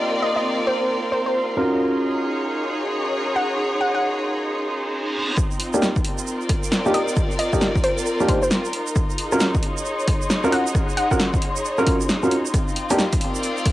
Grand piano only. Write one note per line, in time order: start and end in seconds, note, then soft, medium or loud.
0.00 1.55 A#3 medium
0.00 1.55 D4 medium
0.00 1.55 D#4 medium
0.00 1.55 G4 medium
1.57 5.13 C#4 medium
1.57 5.13 F4 medium
1.57 5.13 F#4 medium
1.57 5.13 A#4 medium
5.74 5.82 A#3 medium
5.74 5.82 D4 medium
5.74 5.82 D#4 medium
5.74 5.82 G4 medium
6.86 6.94 A#3 medium
6.86 6.94 D4 medium
6.86 6.94 D#4 medium
6.86 6.94 G4 loud
7.53 7.61 A#3 medium
7.53 7.61 D4 medium
7.53 7.61 D#4 medium
7.53 7.61 G4 medium
8.20 8.37 A#3 medium
8.20 8.37 D4 medium
8.20 8.37 D#4 medium
8.20 8.37 G4 medium
9.32 9.41 C#4 medium
9.32 9.41 F4 medium
9.32 9.40 F#4 medium
9.32 9.41 A#4 loud
10.44 10.52 C#4 medium
10.44 10.52 F4 medium
10.44 10.52 F#4 medium
10.44 10.52 A#4 loud
11.11 11.20 C#4 medium
11.11 11.20 F4 medium
11.11 11.20 F#4 medium
11.11 11.20 A#4 medium
11.78 11.95 C#4 medium
11.78 11.95 F4 medium
11.78 11.95 F#4 medium
11.78 11.95 A#4 medium
12.23 12.32 C#4 medium
12.23 12.32 F4 medium
12.23 12.32 F#4 medium
12.23 12.32 A#4 medium
12.90 12.99 A#3 medium
12.90 12.99 D4 medium
12.90 12.99 D#4 medium
12.90 12.99 G4 medium